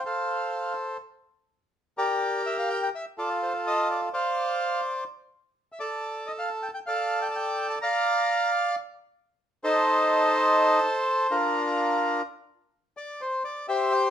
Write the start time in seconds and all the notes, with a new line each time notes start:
0.05 A4 C5 F5
1.98 G4 A#4 D5
2.46 E5
2.59 F5
2.70 G5
2.83 G5
2.95 E5
3.18 F4 A4 D5
3.43 C5
3.67 D#5
3.91 D5
4.14 C5 D5 F5
5.72 E5
5.80 A4 D5
6.27 D#5
6.39 F5
6.63 G5
6.74 G5
6.86 A4 D5 F5
7.22 G5
7.31 A5
7.36 G5
7.70 A5
7.82 D5 F5 A#5
9.64 D#4 A4 C5
11.31 D4 F4 A#4
12.97 D5
13.21 C5
13.44 D5
13.68 G4 C5 E5
13.92 G5